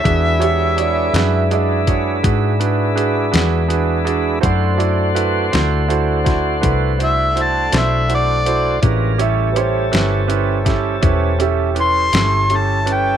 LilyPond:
<<
  \new Staff \with { instrumentName = "Harmonica" } { \time 12/8 \key d \major \tempo 4. = 55 e''2 r1 | r2. r8 e''8 a''8 e''8 d''4 | r1 c'''4 a''8 g''8 | }
  \new Staff \with { instrumentName = "Upright piano" } { \time 12/8 \key d \major r8 <fis' g'>8 d''8 e''8 <dis'' e''>2 r2 | r1. | r8 e''8 <b' c''>2~ <b' c''>8 <g' e''>8 r2 | }
  \new Staff \with { instrumentName = "Grand piano" } { \time 12/8 \key d \major <d' fis' gis' b'>8 <d' fis' gis' cis''>8 <d' fis' gis' cis''>8 <d' fis' gis' b'>8 <d' fis' gis' d''>8 <d' fis' gis' cis''>8 <d' fis' gis' b'>8 <d' fis' gis' b'>8 <d' fis' gis' b'>8 <d' fis' gis' b'>8 <d' fis' gis' b'>8 <d' fis' gis' d''>8 | <e' fis' a' c''>8 <e' fis' a' d''>8 <e' fis' a' b'>8 <e' fis' a' c''>8 <e' fis' a' c''>8 <e' fis' a' c''>8 <e' fis' a' b'>8 <e' fis' a' c''>8 <e' fis' a' c''>8 <e' fis' a' c''>8 <e' fis' a' c''>8 <e' fis' a' c''>8 | <cis' e' g' b'>8 <cis' e' g' cis''>8 <cis' e' g' cis''>8 <cis' e' g' b'>8 <cis' e' g' b'>8 <cis' e' g' a'>8 <cis' e' g' b'>8 <cis' e' g' a'>8 <cis' e' g' b'>8 <cis' e' g' a'>8 <cis' e' g' a'>8 <cis' e' g' b'>8 | }
  \new Staff \with { instrumentName = "Tonewheel organ" } { \time 12/8 \key d \major <gis d' e' b'>1. | <a d' fis' c''>1. | <gis d' f' bes'>8 <g cis' e' a'>1~ <g cis' e' a'>4. | }
  \new Staff \with { instrumentName = "Fingered electric bass" } { \clef bass \time 12/8 \key d \major e,4. fis,4. gis,4. e,4. | fis,4. d,4. c,4. b,,4. | a,,4. g,,4. e,,4. g,,4. | }
  \new DrumStaff \with { instrumentName = "Drums" } \drummode { \time 12/8 <hh bd>8 hh8 hh8 <hh sn>8 hh8 <hh bd>8 <hh bd>8 hh8 hh8 <hh sn>8 hh8 hh8 | <hh bd>8 hh8 hh8 <hh sn>8 hh8 <hh bd sn>8 <hh bd>8 hh8 hh8 <hh sn>8 hh8 hh8 | <hh bd>8 hh8 hh8 <hh sn>8 hh8 <hh bd sn>8 <hh bd>8 hh8 hh8 <hh sn>8 hh8 hh8 | }
>>